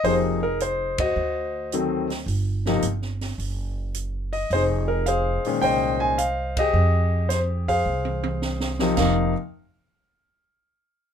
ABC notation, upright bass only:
X:1
M:4/4
L:1/8
Q:"Swing" 1/4=108
K:Fm
V:1 name="Upright bass" clef=bass
F,,,3 E,, =D,,4 | G,,,2 G,,,2 _G,,,4 | F,,,3 z C,,4 | F,,4 C,,4 |
F,,, z6 z |]